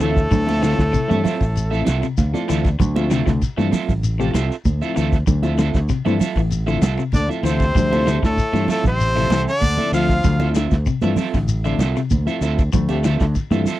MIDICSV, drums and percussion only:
0, 0, Header, 1, 3, 480
1, 0, Start_track
1, 0, Key_signature, -1, "minor"
1, 0, Tempo, 621118
1, 245, Time_signature, 4, 2, 24, 8
1, 10663, End_track
2, 0, Start_track
2, 0, Title_t, "Shekere"
2, 0, Note_on_c, 9, 82, 73
2, 78, Note_off_c, 9, 82, 0
2, 133, Note_on_c, 9, 82, 31
2, 211, Note_off_c, 9, 82, 0
2, 245, Note_on_c, 9, 82, 101
2, 322, Note_off_c, 9, 82, 0
2, 377, Note_on_c, 9, 82, 33
2, 455, Note_off_c, 9, 82, 0
2, 490, Note_on_c, 9, 82, 70
2, 567, Note_off_c, 9, 82, 0
2, 617, Note_on_c, 9, 82, 32
2, 694, Note_off_c, 9, 82, 0
2, 725, Note_on_c, 9, 82, 84
2, 802, Note_off_c, 9, 82, 0
2, 856, Note_on_c, 9, 82, 31
2, 934, Note_off_c, 9, 82, 0
2, 974, Note_on_c, 9, 82, 67
2, 1051, Note_off_c, 9, 82, 0
2, 1104, Note_on_c, 9, 82, 30
2, 1181, Note_off_c, 9, 82, 0
2, 1212, Note_on_c, 9, 82, 92
2, 1289, Note_off_c, 9, 82, 0
2, 1335, Note_on_c, 9, 82, 30
2, 1413, Note_off_c, 9, 82, 0
2, 1446, Note_on_c, 9, 82, 71
2, 1523, Note_off_c, 9, 82, 0
2, 1569, Note_on_c, 9, 82, 29
2, 1646, Note_off_c, 9, 82, 0
2, 1682, Note_on_c, 9, 82, 89
2, 1759, Note_off_c, 9, 82, 0
2, 1818, Note_on_c, 9, 82, 32
2, 1895, Note_off_c, 9, 82, 0
2, 1931, Note_on_c, 9, 82, 71
2, 2008, Note_off_c, 9, 82, 0
2, 2057, Note_on_c, 9, 82, 31
2, 2134, Note_off_c, 9, 82, 0
2, 2173, Note_on_c, 9, 82, 100
2, 2250, Note_off_c, 9, 82, 0
2, 2294, Note_on_c, 9, 82, 31
2, 2371, Note_off_c, 9, 82, 0
2, 2402, Note_on_c, 9, 82, 69
2, 2479, Note_off_c, 9, 82, 0
2, 2529, Note_on_c, 9, 82, 32
2, 2606, Note_off_c, 9, 82, 0
2, 2646, Note_on_c, 9, 82, 79
2, 2723, Note_off_c, 9, 82, 0
2, 2774, Note_on_c, 9, 82, 30
2, 2851, Note_off_c, 9, 82, 0
2, 2885, Note_on_c, 9, 82, 73
2, 2963, Note_off_c, 9, 82, 0
2, 3010, Note_on_c, 9, 82, 30
2, 3087, Note_off_c, 9, 82, 0
2, 3121, Note_on_c, 9, 82, 90
2, 3198, Note_off_c, 9, 82, 0
2, 3251, Note_on_c, 9, 82, 30
2, 3329, Note_off_c, 9, 82, 0
2, 3365, Note_on_c, 9, 82, 68
2, 3443, Note_off_c, 9, 82, 0
2, 3491, Note_on_c, 9, 82, 31
2, 3568, Note_off_c, 9, 82, 0
2, 3594, Note_on_c, 9, 82, 88
2, 3672, Note_off_c, 9, 82, 0
2, 3725, Note_on_c, 9, 82, 32
2, 3802, Note_off_c, 9, 82, 0
2, 3839, Note_on_c, 9, 82, 67
2, 3916, Note_off_c, 9, 82, 0
2, 3961, Note_on_c, 9, 82, 31
2, 4038, Note_off_c, 9, 82, 0
2, 4073, Note_on_c, 9, 82, 93
2, 4151, Note_off_c, 9, 82, 0
2, 4202, Note_on_c, 9, 82, 31
2, 4279, Note_off_c, 9, 82, 0
2, 4314, Note_on_c, 9, 82, 66
2, 4391, Note_off_c, 9, 82, 0
2, 4440, Note_on_c, 9, 82, 30
2, 4517, Note_off_c, 9, 82, 0
2, 4550, Note_on_c, 9, 82, 90
2, 4628, Note_off_c, 9, 82, 0
2, 4684, Note_on_c, 9, 82, 30
2, 4762, Note_off_c, 9, 82, 0
2, 4802, Note_on_c, 9, 82, 73
2, 4880, Note_off_c, 9, 82, 0
2, 4921, Note_on_c, 9, 82, 31
2, 4999, Note_off_c, 9, 82, 0
2, 5036, Note_on_c, 9, 82, 97
2, 5114, Note_off_c, 9, 82, 0
2, 5159, Note_on_c, 9, 82, 31
2, 5236, Note_off_c, 9, 82, 0
2, 5275, Note_on_c, 9, 82, 72
2, 5352, Note_off_c, 9, 82, 0
2, 5403, Note_on_c, 9, 82, 30
2, 5481, Note_off_c, 9, 82, 0
2, 5517, Note_on_c, 9, 82, 89
2, 5594, Note_off_c, 9, 82, 0
2, 5649, Note_on_c, 9, 82, 31
2, 5727, Note_off_c, 9, 82, 0
2, 5763, Note_on_c, 9, 82, 72
2, 5840, Note_off_c, 9, 82, 0
2, 5887, Note_on_c, 9, 82, 31
2, 5964, Note_off_c, 9, 82, 0
2, 6005, Note_on_c, 9, 82, 98
2, 6082, Note_off_c, 9, 82, 0
2, 6132, Note_on_c, 9, 82, 31
2, 6209, Note_off_c, 9, 82, 0
2, 6242, Note_on_c, 9, 82, 69
2, 6319, Note_off_c, 9, 82, 0
2, 6373, Note_on_c, 9, 82, 29
2, 6450, Note_off_c, 9, 82, 0
2, 6482, Note_on_c, 9, 82, 82
2, 6559, Note_off_c, 9, 82, 0
2, 6612, Note_on_c, 9, 82, 31
2, 6689, Note_off_c, 9, 82, 0
2, 6724, Note_on_c, 9, 82, 64
2, 6801, Note_off_c, 9, 82, 0
2, 6844, Note_on_c, 9, 82, 31
2, 6922, Note_off_c, 9, 82, 0
2, 6960, Note_on_c, 9, 82, 89
2, 7037, Note_off_c, 9, 82, 0
2, 7086, Note_on_c, 9, 82, 31
2, 7164, Note_off_c, 9, 82, 0
2, 7201, Note_on_c, 9, 82, 74
2, 7278, Note_off_c, 9, 82, 0
2, 7329, Note_on_c, 9, 82, 31
2, 7407, Note_off_c, 9, 82, 0
2, 7441, Note_on_c, 9, 82, 89
2, 7518, Note_off_c, 9, 82, 0
2, 7567, Note_on_c, 9, 82, 33
2, 7645, Note_off_c, 9, 82, 0
2, 7678, Note_on_c, 9, 82, 70
2, 7756, Note_off_c, 9, 82, 0
2, 7808, Note_on_c, 9, 82, 31
2, 7885, Note_off_c, 9, 82, 0
2, 7912, Note_on_c, 9, 82, 102
2, 7990, Note_off_c, 9, 82, 0
2, 8038, Note_on_c, 9, 82, 32
2, 8115, Note_off_c, 9, 82, 0
2, 8152, Note_on_c, 9, 82, 71
2, 8230, Note_off_c, 9, 82, 0
2, 8276, Note_on_c, 9, 82, 33
2, 8353, Note_off_c, 9, 82, 0
2, 8392, Note_on_c, 9, 82, 83
2, 8470, Note_off_c, 9, 82, 0
2, 8515, Note_on_c, 9, 82, 30
2, 8592, Note_off_c, 9, 82, 0
2, 8630, Note_on_c, 9, 82, 72
2, 8707, Note_off_c, 9, 82, 0
2, 8762, Note_on_c, 9, 82, 31
2, 8840, Note_off_c, 9, 82, 0
2, 8874, Note_on_c, 9, 82, 99
2, 8951, Note_off_c, 9, 82, 0
2, 9002, Note_on_c, 9, 82, 31
2, 9080, Note_off_c, 9, 82, 0
2, 9119, Note_on_c, 9, 82, 71
2, 9196, Note_off_c, 9, 82, 0
2, 9247, Note_on_c, 9, 82, 32
2, 9325, Note_off_c, 9, 82, 0
2, 9355, Note_on_c, 9, 82, 84
2, 9432, Note_off_c, 9, 82, 0
2, 9487, Note_on_c, 9, 82, 32
2, 9564, Note_off_c, 9, 82, 0
2, 9597, Note_on_c, 9, 82, 69
2, 9674, Note_off_c, 9, 82, 0
2, 9727, Note_on_c, 9, 82, 31
2, 9804, Note_off_c, 9, 82, 0
2, 9836, Note_on_c, 9, 82, 100
2, 9913, Note_off_c, 9, 82, 0
2, 9963, Note_on_c, 9, 82, 31
2, 10040, Note_off_c, 9, 82, 0
2, 10077, Note_on_c, 9, 82, 76
2, 10154, Note_off_c, 9, 82, 0
2, 10202, Note_on_c, 9, 82, 30
2, 10279, Note_off_c, 9, 82, 0
2, 10318, Note_on_c, 9, 82, 77
2, 10395, Note_off_c, 9, 82, 0
2, 10447, Note_on_c, 9, 82, 29
2, 10524, Note_off_c, 9, 82, 0
2, 10561, Note_on_c, 9, 82, 69
2, 10638, Note_off_c, 9, 82, 0
2, 10663, End_track
3, 0, Start_track
3, 0, Title_t, "Drums"
3, 3, Note_on_c, 9, 53, 51
3, 10, Note_on_c, 9, 38, 30
3, 80, Note_off_c, 9, 53, 0
3, 88, Note_off_c, 9, 38, 0
3, 129, Note_on_c, 9, 36, 84
3, 206, Note_off_c, 9, 36, 0
3, 239, Note_on_c, 9, 53, 55
3, 243, Note_on_c, 9, 36, 98
3, 253, Note_on_c, 9, 63, 38
3, 253, Note_on_c, 9, 64, 91
3, 316, Note_off_c, 9, 53, 0
3, 320, Note_off_c, 9, 36, 0
3, 331, Note_off_c, 9, 63, 0
3, 331, Note_off_c, 9, 64, 0
3, 376, Note_on_c, 9, 63, 98
3, 377, Note_on_c, 9, 38, 31
3, 453, Note_off_c, 9, 63, 0
3, 454, Note_off_c, 9, 38, 0
3, 479, Note_on_c, 9, 53, 56
3, 487, Note_on_c, 9, 38, 77
3, 556, Note_off_c, 9, 53, 0
3, 564, Note_off_c, 9, 38, 0
3, 609, Note_on_c, 9, 36, 74
3, 614, Note_on_c, 9, 38, 79
3, 686, Note_off_c, 9, 36, 0
3, 691, Note_off_c, 9, 38, 0
3, 721, Note_on_c, 9, 53, 53
3, 724, Note_on_c, 9, 36, 71
3, 729, Note_on_c, 9, 63, 39
3, 798, Note_off_c, 9, 53, 0
3, 801, Note_off_c, 9, 36, 0
3, 807, Note_off_c, 9, 63, 0
3, 858, Note_on_c, 9, 63, 94
3, 935, Note_off_c, 9, 63, 0
3, 961, Note_on_c, 9, 46, 67
3, 969, Note_on_c, 9, 38, 30
3, 969, Note_on_c, 9, 64, 94
3, 1039, Note_off_c, 9, 46, 0
3, 1046, Note_off_c, 9, 38, 0
3, 1046, Note_off_c, 9, 64, 0
3, 1085, Note_on_c, 9, 53, 52
3, 1089, Note_on_c, 9, 36, 63
3, 1162, Note_off_c, 9, 53, 0
3, 1166, Note_off_c, 9, 36, 0
3, 1201, Note_on_c, 9, 53, 56
3, 1208, Note_on_c, 9, 63, 37
3, 1278, Note_off_c, 9, 53, 0
3, 1285, Note_off_c, 9, 63, 0
3, 1443, Note_on_c, 9, 53, 58
3, 1443, Note_on_c, 9, 63, 96
3, 1450, Note_on_c, 9, 38, 80
3, 1520, Note_off_c, 9, 53, 0
3, 1521, Note_off_c, 9, 63, 0
3, 1528, Note_off_c, 9, 38, 0
3, 1568, Note_on_c, 9, 53, 57
3, 1645, Note_off_c, 9, 53, 0
3, 1683, Note_on_c, 9, 36, 71
3, 1683, Note_on_c, 9, 53, 61
3, 1685, Note_on_c, 9, 63, 86
3, 1691, Note_on_c, 9, 38, 32
3, 1760, Note_off_c, 9, 53, 0
3, 1761, Note_off_c, 9, 36, 0
3, 1762, Note_off_c, 9, 63, 0
3, 1768, Note_off_c, 9, 38, 0
3, 1811, Note_on_c, 9, 63, 72
3, 1820, Note_on_c, 9, 38, 27
3, 1889, Note_off_c, 9, 63, 0
3, 1897, Note_off_c, 9, 38, 0
3, 1919, Note_on_c, 9, 53, 62
3, 1927, Note_on_c, 9, 38, 30
3, 1997, Note_off_c, 9, 53, 0
3, 2004, Note_off_c, 9, 38, 0
3, 2043, Note_on_c, 9, 53, 58
3, 2047, Note_on_c, 9, 36, 80
3, 2051, Note_on_c, 9, 38, 33
3, 2120, Note_off_c, 9, 53, 0
3, 2124, Note_off_c, 9, 36, 0
3, 2128, Note_off_c, 9, 38, 0
3, 2159, Note_on_c, 9, 53, 56
3, 2162, Note_on_c, 9, 36, 94
3, 2169, Note_on_c, 9, 63, 36
3, 2169, Note_on_c, 9, 64, 96
3, 2236, Note_off_c, 9, 53, 0
3, 2239, Note_off_c, 9, 36, 0
3, 2246, Note_off_c, 9, 63, 0
3, 2246, Note_off_c, 9, 64, 0
3, 2290, Note_on_c, 9, 63, 100
3, 2367, Note_off_c, 9, 63, 0
3, 2398, Note_on_c, 9, 53, 56
3, 2406, Note_on_c, 9, 38, 76
3, 2476, Note_off_c, 9, 53, 0
3, 2483, Note_off_c, 9, 38, 0
3, 2526, Note_on_c, 9, 36, 70
3, 2532, Note_on_c, 9, 38, 80
3, 2603, Note_off_c, 9, 36, 0
3, 2609, Note_off_c, 9, 38, 0
3, 2638, Note_on_c, 9, 53, 59
3, 2640, Note_on_c, 9, 36, 70
3, 2644, Note_on_c, 9, 63, 40
3, 2646, Note_on_c, 9, 38, 32
3, 2715, Note_off_c, 9, 53, 0
3, 2717, Note_off_c, 9, 36, 0
3, 2721, Note_off_c, 9, 63, 0
3, 2723, Note_off_c, 9, 38, 0
3, 2771, Note_on_c, 9, 63, 88
3, 2849, Note_off_c, 9, 63, 0
3, 2877, Note_on_c, 9, 46, 64
3, 2883, Note_on_c, 9, 63, 81
3, 2883, Note_on_c, 9, 64, 95
3, 2885, Note_on_c, 9, 38, 31
3, 2954, Note_off_c, 9, 46, 0
3, 2960, Note_off_c, 9, 63, 0
3, 2960, Note_off_c, 9, 64, 0
3, 2962, Note_off_c, 9, 38, 0
3, 3004, Note_on_c, 9, 36, 66
3, 3008, Note_on_c, 9, 64, 69
3, 3081, Note_off_c, 9, 36, 0
3, 3085, Note_off_c, 9, 64, 0
3, 3116, Note_on_c, 9, 53, 55
3, 3124, Note_on_c, 9, 63, 36
3, 3193, Note_off_c, 9, 53, 0
3, 3202, Note_off_c, 9, 63, 0
3, 3354, Note_on_c, 9, 53, 55
3, 3362, Note_on_c, 9, 38, 72
3, 3362, Note_on_c, 9, 63, 90
3, 3431, Note_off_c, 9, 53, 0
3, 3439, Note_off_c, 9, 38, 0
3, 3439, Note_off_c, 9, 63, 0
3, 3488, Note_on_c, 9, 38, 29
3, 3566, Note_off_c, 9, 38, 0
3, 3592, Note_on_c, 9, 53, 53
3, 3596, Note_on_c, 9, 36, 69
3, 3600, Note_on_c, 9, 63, 82
3, 3670, Note_off_c, 9, 53, 0
3, 3673, Note_off_c, 9, 36, 0
3, 3678, Note_off_c, 9, 63, 0
3, 3838, Note_on_c, 9, 53, 48
3, 3915, Note_off_c, 9, 53, 0
3, 3961, Note_on_c, 9, 36, 78
3, 3969, Note_on_c, 9, 38, 33
3, 4038, Note_off_c, 9, 36, 0
3, 4046, Note_off_c, 9, 38, 0
3, 4074, Note_on_c, 9, 53, 54
3, 4075, Note_on_c, 9, 36, 102
3, 4075, Note_on_c, 9, 63, 37
3, 4075, Note_on_c, 9, 64, 92
3, 4151, Note_off_c, 9, 53, 0
3, 4152, Note_off_c, 9, 36, 0
3, 4152, Note_off_c, 9, 63, 0
3, 4152, Note_off_c, 9, 64, 0
3, 4198, Note_on_c, 9, 63, 97
3, 4275, Note_off_c, 9, 63, 0
3, 4313, Note_on_c, 9, 53, 52
3, 4321, Note_on_c, 9, 38, 81
3, 4391, Note_off_c, 9, 53, 0
3, 4398, Note_off_c, 9, 38, 0
3, 4438, Note_on_c, 9, 36, 75
3, 4445, Note_on_c, 9, 38, 78
3, 4516, Note_off_c, 9, 36, 0
3, 4522, Note_off_c, 9, 38, 0
3, 4552, Note_on_c, 9, 53, 55
3, 4553, Note_on_c, 9, 36, 65
3, 4554, Note_on_c, 9, 63, 38
3, 4560, Note_on_c, 9, 38, 29
3, 4629, Note_off_c, 9, 53, 0
3, 4630, Note_off_c, 9, 36, 0
3, 4631, Note_off_c, 9, 63, 0
3, 4637, Note_off_c, 9, 38, 0
3, 4681, Note_on_c, 9, 63, 89
3, 4758, Note_off_c, 9, 63, 0
3, 4786, Note_on_c, 9, 46, 66
3, 4799, Note_on_c, 9, 64, 89
3, 4864, Note_off_c, 9, 46, 0
3, 4876, Note_off_c, 9, 64, 0
3, 4911, Note_on_c, 9, 53, 50
3, 4916, Note_on_c, 9, 36, 64
3, 4988, Note_off_c, 9, 53, 0
3, 4993, Note_off_c, 9, 36, 0
3, 5026, Note_on_c, 9, 53, 58
3, 5040, Note_on_c, 9, 63, 36
3, 5104, Note_off_c, 9, 53, 0
3, 5117, Note_off_c, 9, 63, 0
3, 5266, Note_on_c, 9, 53, 60
3, 5274, Note_on_c, 9, 38, 75
3, 5280, Note_on_c, 9, 63, 94
3, 5343, Note_off_c, 9, 53, 0
3, 5351, Note_off_c, 9, 38, 0
3, 5357, Note_off_c, 9, 63, 0
3, 5389, Note_on_c, 9, 53, 52
3, 5466, Note_off_c, 9, 53, 0
3, 5500, Note_on_c, 9, 53, 57
3, 5508, Note_on_c, 9, 36, 68
3, 5519, Note_on_c, 9, 63, 76
3, 5578, Note_off_c, 9, 53, 0
3, 5585, Note_off_c, 9, 36, 0
3, 5596, Note_off_c, 9, 63, 0
3, 5743, Note_on_c, 9, 53, 54
3, 5821, Note_off_c, 9, 53, 0
3, 5870, Note_on_c, 9, 53, 63
3, 5875, Note_on_c, 9, 36, 80
3, 5948, Note_off_c, 9, 53, 0
3, 5952, Note_off_c, 9, 36, 0
3, 5989, Note_on_c, 9, 53, 55
3, 5991, Note_on_c, 9, 36, 94
3, 6003, Note_on_c, 9, 63, 35
3, 6003, Note_on_c, 9, 64, 86
3, 6067, Note_off_c, 9, 53, 0
3, 6068, Note_off_c, 9, 36, 0
3, 6080, Note_off_c, 9, 63, 0
3, 6080, Note_off_c, 9, 64, 0
3, 6125, Note_on_c, 9, 38, 30
3, 6126, Note_on_c, 9, 63, 99
3, 6202, Note_off_c, 9, 38, 0
3, 6203, Note_off_c, 9, 63, 0
3, 6233, Note_on_c, 9, 53, 57
3, 6241, Note_on_c, 9, 38, 79
3, 6310, Note_off_c, 9, 53, 0
3, 6318, Note_off_c, 9, 38, 0
3, 6358, Note_on_c, 9, 36, 72
3, 6369, Note_on_c, 9, 38, 77
3, 6436, Note_off_c, 9, 36, 0
3, 6446, Note_off_c, 9, 38, 0
3, 6473, Note_on_c, 9, 36, 73
3, 6473, Note_on_c, 9, 53, 54
3, 6476, Note_on_c, 9, 63, 38
3, 6550, Note_off_c, 9, 36, 0
3, 6550, Note_off_c, 9, 53, 0
3, 6553, Note_off_c, 9, 63, 0
3, 6597, Note_on_c, 9, 63, 92
3, 6674, Note_off_c, 9, 63, 0
3, 6710, Note_on_c, 9, 64, 86
3, 6714, Note_on_c, 9, 46, 72
3, 6787, Note_off_c, 9, 64, 0
3, 6791, Note_off_c, 9, 46, 0
3, 6829, Note_on_c, 9, 64, 71
3, 6839, Note_on_c, 9, 36, 69
3, 6906, Note_off_c, 9, 64, 0
3, 6916, Note_off_c, 9, 36, 0
3, 6950, Note_on_c, 9, 63, 35
3, 6958, Note_on_c, 9, 53, 58
3, 7027, Note_off_c, 9, 63, 0
3, 7035, Note_off_c, 9, 53, 0
3, 7188, Note_on_c, 9, 63, 100
3, 7192, Note_on_c, 9, 53, 52
3, 7200, Note_on_c, 9, 38, 74
3, 7266, Note_off_c, 9, 63, 0
3, 7269, Note_off_c, 9, 53, 0
3, 7277, Note_off_c, 9, 38, 0
3, 7334, Note_on_c, 9, 38, 27
3, 7411, Note_off_c, 9, 38, 0
3, 7429, Note_on_c, 9, 63, 76
3, 7433, Note_on_c, 9, 53, 52
3, 7434, Note_on_c, 9, 36, 71
3, 7507, Note_off_c, 9, 63, 0
3, 7510, Note_off_c, 9, 53, 0
3, 7511, Note_off_c, 9, 36, 0
3, 7556, Note_on_c, 9, 63, 69
3, 7633, Note_off_c, 9, 63, 0
3, 7673, Note_on_c, 9, 53, 52
3, 7750, Note_off_c, 9, 53, 0
3, 7800, Note_on_c, 9, 36, 84
3, 7877, Note_off_c, 9, 36, 0
3, 7913, Note_on_c, 9, 63, 36
3, 7913, Note_on_c, 9, 64, 84
3, 7914, Note_on_c, 9, 53, 53
3, 7915, Note_on_c, 9, 36, 94
3, 7990, Note_off_c, 9, 63, 0
3, 7990, Note_off_c, 9, 64, 0
3, 7991, Note_off_c, 9, 53, 0
3, 7993, Note_off_c, 9, 36, 0
3, 8035, Note_on_c, 9, 63, 95
3, 8112, Note_off_c, 9, 63, 0
3, 8157, Note_on_c, 9, 53, 52
3, 8165, Note_on_c, 9, 38, 74
3, 8234, Note_off_c, 9, 53, 0
3, 8242, Note_off_c, 9, 38, 0
3, 8282, Note_on_c, 9, 36, 76
3, 8289, Note_on_c, 9, 38, 80
3, 8360, Note_off_c, 9, 36, 0
3, 8366, Note_off_c, 9, 38, 0
3, 8391, Note_on_c, 9, 63, 39
3, 8398, Note_on_c, 9, 36, 70
3, 8402, Note_on_c, 9, 53, 55
3, 8468, Note_off_c, 9, 63, 0
3, 8475, Note_off_c, 9, 36, 0
3, 8479, Note_off_c, 9, 53, 0
3, 8513, Note_on_c, 9, 63, 94
3, 8590, Note_off_c, 9, 63, 0
3, 8629, Note_on_c, 9, 64, 91
3, 8647, Note_on_c, 9, 46, 68
3, 8655, Note_on_c, 9, 38, 32
3, 8706, Note_off_c, 9, 64, 0
3, 8724, Note_off_c, 9, 46, 0
3, 8732, Note_off_c, 9, 38, 0
3, 8765, Note_on_c, 9, 36, 66
3, 8767, Note_on_c, 9, 53, 47
3, 8774, Note_on_c, 9, 38, 29
3, 8842, Note_off_c, 9, 36, 0
3, 8844, Note_off_c, 9, 53, 0
3, 8852, Note_off_c, 9, 38, 0
3, 8875, Note_on_c, 9, 63, 38
3, 8880, Note_on_c, 9, 53, 55
3, 8952, Note_off_c, 9, 63, 0
3, 8958, Note_off_c, 9, 53, 0
3, 9113, Note_on_c, 9, 63, 88
3, 9121, Note_on_c, 9, 53, 52
3, 9129, Note_on_c, 9, 38, 75
3, 9190, Note_off_c, 9, 63, 0
3, 9198, Note_off_c, 9, 53, 0
3, 9206, Note_off_c, 9, 38, 0
3, 9250, Note_on_c, 9, 53, 58
3, 9258, Note_on_c, 9, 38, 30
3, 9328, Note_off_c, 9, 53, 0
3, 9336, Note_off_c, 9, 38, 0
3, 9357, Note_on_c, 9, 63, 82
3, 9361, Note_on_c, 9, 36, 74
3, 9362, Note_on_c, 9, 53, 56
3, 9434, Note_off_c, 9, 63, 0
3, 9438, Note_off_c, 9, 36, 0
3, 9439, Note_off_c, 9, 53, 0
3, 9499, Note_on_c, 9, 38, 27
3, 9576, Note_off_c, 9, 38, 0
3, 9607, Note_on_c, 9, 53, 54
3, 9684, Note_off_c, 9, 53, 0
3, 9727, Note_on_c, 9, 36, 84
3, 9728, Note_on_c, 9, 53, 61
3, 9804, Note_off_c, 9, 36, 0
3, 9805, Note_off_c, 9, 53, 0
3, 9838, Note_on_c, 9, 53, 57
3, 9838, Note_on_c, 9, 63, 36
3, 9838, Note_on_c, 9, 64, 91
3, 9840, Note_on_c, 9, 36, 95
3, 9915, Note_off_c, 9, 53, 0
3, 9916, Note_off_c, 9, 63, 0
3, 9916, Note_off_c, 9, 64, 0
3, 9917, Note_off_c, 9, 36, 0
3, 9959, Note_on_c, 9, 63, 92
3, 9977, Note_on_c, 9, 38, 30
3, 10037, Note_off_c, 9, 63, 0
3, 10054, Note_off_c, 9, 38, 0
3, 10078, Note_on_c, 9, 53, 55
3, 10086, Note_on_c, 9, 38, 76
3, 10155, Note_off_c, 9, 53, 0
3, 10163, Note_off_c, 9, 38, 0
3, 10205, Note_on_c, 9, 36, 70
3, 10211, Note_on_c, 9, 38, 75
3, 10282, Note_off_c, 9, 36, 0
3, 10288, Note_off_c, 9, 38, 0
3, 10315, Note_on_c, 9, 53, 58
3, 10318, Note_on_c, 9, 63, 40
3, 10319, Note_on_c, 9, 36, 69
3, 10323, Note_on_c, 9, 38, 30
3, 10393, Note_off_c, 9, 53, 0
3, 10395, Note_off_c, 9, 63, 0
3, 10396, Note_off_c, 9, 36, 0
3, 10400, Note_off_c, 9, 38, 0
3, 10441, Note_on_c, 9, 63, 89
3, 10518, Note_off_c, 9, 63, 0
3, 10553, Note_on_c, 9, 64, 89
3, 10555, Note_on_c, 9, 46, 70
3, 10563, Note_on_c, 9, 38, 28
3, 10630, Note_off_c, 9, 64, 0
3, 10632, Note_off_c, 9, 46, 0
3, 10640, Note_off_c, 9, 38, 0
3, 10663, End_track
0, 0, End_of_file